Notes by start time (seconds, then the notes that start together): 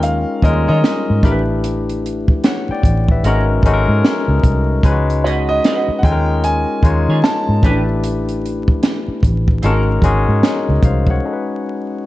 Already playing: D#2 G#3 C#4 D#4 F4 A#4
0.03 F5, closed hi-hat
0.42 D#2 G3 C#4 D#4 F4 A#4 D#5, kick, closed hi-hat
0.49 G#3
0.68 D#3 F4 G#4 C#5 D#5
0.84 snare, closed hi-hat
1.10 G#2
1.23 A1 A3 D4 E4 G4 A#4 B4, kick, closed hi-hat
1.32 B4
1.64 closed hi-hat
1.89 closed hi-hat
2.06 closed hi-hat
2.28 kick
2.44 C#5 F#5, snare, closed hi-hat
2.69 D5 G5, muted fingered electric bass stroke
2.83 A1, kick, closed hi-hat
3.08 B4 E5, kick
3.23 G#1 G#3 C#4 D#4 F#4 A#4, closed hi-hat
3.27 A#4
3.63 G#1 G#3 C#4 D#4, kick, closed hi-hat
3.67 F#4 A4
3.74 A#4
3.88 G#2
4.05 snare, closed hi-hat
4.28 C#2
4.44 C2, kick, closed hi-hat
4.83 C#2 G#3 C#4 D#4 F4 B4, kick, closed hi-hat
4.92 F#4
5.10 closed hi-hat
5.24 F#4 B4 C#5 D#5, closed hi-hat
5.49 D#5
5.64 F#4 B4 D#5, snare, closed hi-hat
5.88 muted fingered electric bass stroke
5.99 F#5
6.03 D#2 G#3 C#4 D#4 F4 A4 G5, kick, closed hi-hat
6.12 A#4
6.44 G#5, closed hi-hat
6.83 D#2 G#3 C#4 D#4 F4 C#5, kick, closed hi-hat
7.08 D#3 F4 G#4 C#5
7.24 A5, snare, closed hi-hat
7.49 G#2
7.63 A1 A3 C#4 D4 E4 G4 B4, kick, closed hi-hat
7.71 D4
8.04 closed hi-hat
8.29 closed hi-hat
8.46 closed hi-hat
8.68 kick
8.83 snare, closed hi-hat
9.08 muted fingered electric bass stroke
9.23 A1, kick, closed hi-hat
9.48 kick
9.62 G#1 G#3 C4 C#4 D#4 F#4 A#4, closed hi-hat
9.73 C#4
10.02 G#1 G#3 C#4 D#4 F#4 G#4, kick, closed hi-hat
10.28 G#2
10.43 G#4 C#5, snare, closed hi-hat
10.69 C#2
10.83 C2 C5 F5, kick, closed hi-hat
11.07 F#5, kick
11.11 C#5
11.25 G#3 C#4 D#4 F#4 A4
11.33 B4